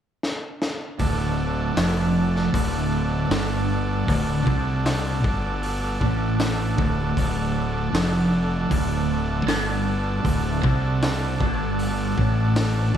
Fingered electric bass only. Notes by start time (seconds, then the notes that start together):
1.00 D1
1.77 F1
2.55 D1
3.30 G1
4.08 D1
4.47 C2
5.24 G1
6.01 A1
6.78 D1
7.18 D1
7.93 F1
8.71 D1
9.45 G1
10.25 D1
10.64 C2
11.41 G1
12.18 A1